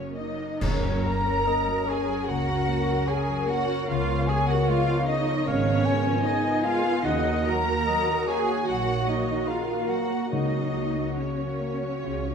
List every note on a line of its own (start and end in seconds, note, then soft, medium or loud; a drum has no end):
0.00 0.36 F#1 soft
0.00 0.62 F#2 soft
0.00 0.66 C#3 soft
0.00 0.36 F#3 soft
0.00 0.36 A#3 soft
0.00 0.92 A#3 soft
0.00 0.14 C#4 soft
0.00 1.20 A#4 soft
0.00 0.13 C#5 soft
0.00 0.14 C#5 soft
0.00 0.18 C#5 soft
0.00 0.30 C#5 soft
0.16 0.62 D#4 medium
0.16 0.61 D#5 soft
0.16 0.64 D#5 medium
0.16 0.61 D#5 medium
0.31 1.47 C#5 soft
0.61 1.35 F#1 medium
0.61 1.85 F#2 medium
0.61 3.91 F#2 medium
0.61 0.83 C#3 medium
0.61 1.06 C#4 medium
0.61 3.84 C#4 medium
0.61 7.00 A#4 medium
0.61 1.48 A#4 medium
0.61 1.06 C#5 medium
0.61 1.08 C#5 medium
0.61 1.07 C#5 medium
0.61 concert bass drum medium
0.61 crash medium
0.86 1.07 F#3 medium
0.93 2.54 A#3 soft
1.05 1.27 A#3 soft
1.05 1.86 A#4 medium
1.05 1.88 A#5 medium
1.05 1.87 A#5 medium
1.05 1.89 A#5 medium
1.21 1.74 A#4 soft
1.28 1.48 C#4 medium
1.46 1.68 A#3 medium
1.46 2.02 C#5 medium
1.46 1.89 D#5 medium
1.69 1.89 F#3 medium
1.76 2.81 A#4 soft
1.87 2.09 C#3 medium
1.87 2.28 G#4 medium
1.87 2.31 C#5 medium
1.87 2.31 G#5 medium
1.87 2.29 G#5 medium
2.03 3.07 C#5 soft
2.09 2.29 F#3 medium
2.28 2.94 C#2 medium
2.28 3.89 C#3 soft
2.28 2.48 A#3 medium
2.28 3.06 F#4 medium
2.28 3.09 A#4 medium
2.28 3.07 F#5 medium
2.28 3.08 F#5 medium
2.28 3.09 F#5 medium
2.49 2.68 C#4 soft
2.56 6.46 A#3 soft
2.68 2.88 A#3 medium
2.82 3.34 A#4 soft
2.89 3.08 F#3 medium
3.07 3.27 C#3 medium
3.07 3.48 G#4 medium
3.07 5.46 C#5 medium
3.07 3.61 C#5 medium
3.07 3.48 G#5 medium
3.07 3.49 G#5 medium
3.29 3.48 F#3 soft
3.36 4.41 A#4 medium
3.47 3.68 A#3 medium
3.47 3.88 F#4 medium
3.47 3.89 F#5 medium
3.47 3.88 F#5 medium
3.47 3.89 F#5 medium
3.62 7.52 C#5 medium
3.67 3.88 C#4 medium
3.87 4.55 C#2 medium
3.87 4.07 C#3 medium
3.87 7.08 C#3 medium
3.87 7.04 B3 medium
3.87 4.27 F4 loud
3.87 4.27 F5 medium
3.87 4.28 F5 medium
3.87 4.29 F5 medium
4.08 4.28 F3 medium
4.16 5.73 B3 medium
4.26 4.49 G#3 medium
4.26 4.48 G#4 medium
4.26 4.48 G#5 medium
4.42 5.98 A#4 medium
4.46 4.68 B3 medium
4.46 4.68 F#4 medium
4.46 4.69 F#5 medium
4.46 4.68 F#5 medium
4.68 4.88 G#3 medium
4.68 5.07 F4 loud
4.68 5.20 D#5 medium
4.68 5.09 F5 medium
4.68 5.06 F5 medium
4.68 5.08 F5 medium
4.88 5.07 F3 medium
4.94 6.49 B4 medium
5.07 5.27 C#3 medium
5.07 5.45 D#4 loud
5.07 5.45 D#5 medium
5.07 5.46 D#5 medium
5.22 6.24 D#5 medium
5.29 5.47 F3 medium
5.46 6.11 G#1 medium
5.46 7.08 G#3 medium
5.46 5.65 G#3 medium
5.46 6.24 C#4 medium
5.46 5.95 C#5 medium
5.46 6.24 C#5 medium
5.46 6.24 C#5 loud
5.46 5.87 F5 medium
5.67 5.86 B3 medium
5.74 7.08 B3 soft
5.85 6.05 G#3 medium
5.85 7.03 G#5 loud
5.99 8.13 A#4 medium
6.07 6.25 F3 medium
6.24 6.44 C#3 medium
6.24 6.63 D#4 medium
6.24 6.63 D#5 medium
6.24 6.66 D#5 medium
6.24 6.62 D#5 medium
6.24 6.77 D#5 medium
6.45 6.64 F3 medium
6.51 7.08 B4 medium
6.63 6.84 G#3 medium
6.63 7.05 F4 loud
6.63 7.04 F5 medium
6.63 7.05 F5 medium
6.63 7.04 F5 medium
6.78 10.36 D#5 medium
6.84 7.04 B3 medium
7.04 7.73 D#2 medium
7.04 7.24 C#3 medium
7.04 10.36 D#3 medium
7.04 11.85 A#3 medium
7.04 7.46 D#4 loud
7.04 12.00 F#4 medium
7.04 12.35 F#4 medium
7.04 7.46 D#5 medium
7.04 7.50 D#5 medium
7.04 7.47 D#5 medium
7.04 7.57 F#5 medium
7.27 7.47 D#3 medium
7.35 8.93 A#3 medium
7.46 7.67 F#3 medium
7.46 8.26 A#4 medium
7.46 8.24 A#5 medium
7.46 8.27 A#5 loud
7.46 8.28 A#5 loud
7.61 9.20 F#4 medium
7.67 7.87 A#3 medium
7.86 8.06 F#3 medium
7.86 8.40 C#5 medium
7.86 8.29 D#5 medium
8.07 8.27 D#3 medium
8.14 9.76 A#4 medium
8.26 8.47 C#3 medium
8.26 8.66 G#4 medium
8.26 9.49 C#5 medium
8.26 8.70 G#5 medium
8.26 8.67 G#5 medium
8.26 8.68 G#5 medium
8.41 9.48 C#5 medium
8.48 8.67 D#3 medium
8.66 9.35 A#1 medium
8.66 8.86 F#3 medium
8.66 10.35 D#4 medium
8.66 9.06 F#4 medium
8.66 9.08 F#5 medium
8.66 9.10 F#5 medium
8.66 9.08 F#5 medium
8.88 9.07 A#3 soft
8.94 10.60 A#3 soft
9.07 9.28 F#3 medium
9.07 9.48 D#4 medium
9.07 9.48 D#5 medium
9.07 9.49 D#5 medium
9.21 10.89 F#4 soft
9.28 9.48 D#3 medium
9.47 9.69 C#3 medium
9.47 9.89 F4 medium
9.47 10.31 A#4 medium
9.47 10.04 C#5 soft
9.47 9.90 F5 medium
9.69 9.90 D#3 soft
9.77 11.45 A#4 soft
9.89 10.10 F#3 soft
9.89 10.32 F#4 medium
9.89 10.30 F#5 medium
9.89 10.32 F#5 medium
10.05 11.17 C#5 soft
10.11 10.32 A#3 medium
10.31 11.03 C#2 medium
10.31 10.51 C#3 soft
10.31 12.03 C#3 medium
10.31 11.56 C#3 medium
10.31 11.15 D#4 medium
10.31 12.35 C#5 soft
10.31 10.86 D#5 medium
10.31 11.17 D#5 medium
10.31 11.15 D#5 medium
10.53 10.74 F#3 soft
10.62 12.07 A#3 soft
10.75 10.96 A#3 soft
10.90 12.07 F#4 soft
10.96 11.17 F#3 soft
11.16 11.39 C#3 soft
11.16 12.35 C#4 medium
11.16 12.35 C#5 medium
11.16 12.35 C#5 soft
11.16 11.74 C#5 soft
11.38 11.60 F#3 soft
11.47 12.07 A#4 soft
11.61 11.82 A#3 soft
11.75 12.35 C#5 soft
11.82 12.03 F#3 soft
12.02 12.35 C#2 medium
12.02 12.23 C#3 soft
12.02 12.35 C#3 soft
12.02 12.35 C#4 soft
12.02 12.35 F4 soft
12.24 12.35 F3 soft